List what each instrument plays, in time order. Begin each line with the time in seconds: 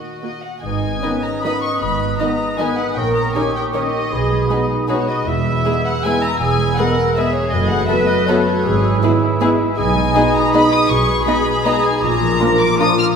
Already playing: harp D#3 A#3 F#4 A#4, violin section F#4 D#5
0.23 viola section A#3 F#4, violin section D#5
0.45 violin section F#5
0.63 double bass section G#1, harp G#2, cello section D#4, clarinet B4, cor anglais D#5, violin section G#5, flute section D#6
0.82 harp B3
1.02 french horn section D#3 B3, viola section D#3 D#4, cello section C#4, harp G#4, violin section B4 D#5
1.23 harp B4, violin section A#5
1.43 viola section D#3 D#4, french horn section D#3 B3, harp G#4, violin section B4 D#5 B5
1.63 harp D#4, violin section C#6
1.81 double bass section G#1, harp G#2, cello section B3, violin section B5
1.99 harp B3
2.19 french horn section D#3 B3, viola section D#3 D#4, cello section D#4, harp G#4, violin section B4 D#5 A#5
2.38 harp B4
2.58 viola section D#3 D#4, french horn section D#3 B3, harp G#4, violin section B4 D#5 G#5, cello section B4
2.77 harp D#4, violin section F#5
2.96 double bass section A#1, harp A#2, cello section A#4, clarinet A#4, cor anglais C#5, violin section G5, flute section D#6
3.15 harp A#3, violin section A#5
3.35 viola section D#3 D#4, french horn section D#3 C#4, cello section G4, violin section A#4 C#5 G#5, harp C#5
3.55 harp A#4, violin section G5
3.73 french horn section D#3 C#4, viola section D#3 D#4, violin section A#4 C#5 D#5, harp C#5
3.94 harp D#4
4.12 double bass section B1, harp B2, cello section G#4, clarinet G#4, cor anglais B4
4.30 harp G#3
4.49 french horn section G#3 B3, viola section G#3 D#4, cello section D#4, violin section G#4 B4, harp B4
4.70 harp G#4
4.88 french horn section G#3 B3, viola section G#3 D#4, cello section F#4, violin section G#4 B4 C#5
5.08 harp D#4, violin section D#5
5.26 double bass section E1, harp E2, cello section E4, clarinet G#4, cor anglais B4, violin section E5, flute section E6
5.45 harp G#3
5.65 viola section G#3 G#4, french horn section G#3 B3, violin section G#4 B4, harp B4
5.84 harp G#4, violin section F#5
6.04 viola section G#3 G#4, french horn section G#3 B3, cello section E4, violin section G#4 B4 G#5, harp B4
6.23 violin section A#5
6.40 double bass section E1, harp E2, cello section G#4, violin section G#5
6.58 harp G#3
6.77 french horn section G#3 B3, viola section G#3 G#4, violin section G#4 B4 F#5, cello section A#4, harp B4
6.97 harp G#4
7.16 french horn section G#3 B3, viola section G#3 G#4, cello section G#4, violin section G#4 B4 E5
7.34 harp G#4, violin section C#5
7.52 double bass section F#1, harp F#2, clarinet A4, cor anglais B4, violin section D#5, flute section F#6
7.70 harp A3, violin section F#5
7.88 french horn section A3 B3, viola section B3 F#4, violin section A4 B4 E5, cello section B4
8.08 harp A4, violin section D#5
8.27 french horn section A3 B3, viola section B3 F#4, violin section A4 B4 C#5, cello section A4
8.48 harp F#4
8.65 double bass section G#1, harp G#2, cello section G#4, clarinet G#4, flute section E6
8.84 harp G#3
9.02 french horn section G#3 E4, viola section B3 E4, cello section E4, violin section G#4 B4, harp B4
9.22 harp G#4
9.40 french horn section G#3 E4, viola section B3 E4, violin section G#4 B4, harp B4
9.60 harp E4
9.77 double bass section B1, harp B2, cello section D#4, clarinet G#4, cor anglais B4, violin section G#5, flute section D#6
9.95 harp G#3
10.14 french horn section G#3 D#4, viola section B3 D#4, violin section G#4 D#5, harp D#5
10.34 harp G#4, violin section A#5
10.53 french horn section G#3 D#4, viola section B3 D#4, violin section G#4 D#5 B5, harp D#5
10.71 harp D#4, violin section D#6
10.89 double bass section B1, harp B2, cello section G#4, violin section C#6
11.07 harp G#3
11.25 french horn section G#3 D#4, viola section B3 D#4, violin section G#4 D#5 B5, harp D#5
11.46 harp G#4
11.64 french horn section G#3 D#4, viola section B3 D#4, violin section G#4 D#5 A#5, harp D#5
11.84 harp D#4, violin section G#5
12.02 double bass section A#1, harp A#2, clarinet F4, cor anglais A#4, violin section A#5, flute section D6
12.21 harp F3
12.40 french horn section F3 D4, viola section A#3 D4, violin section F4 A#4, harp A#4, cello section A#4
12.59 harp F4, violin section D6
12.78 french horn section F3 D4, viola section A#3 D4, cello section F4, violin section F4 A#4 D#6, harp A#4
12.97 harp D4, violin section F6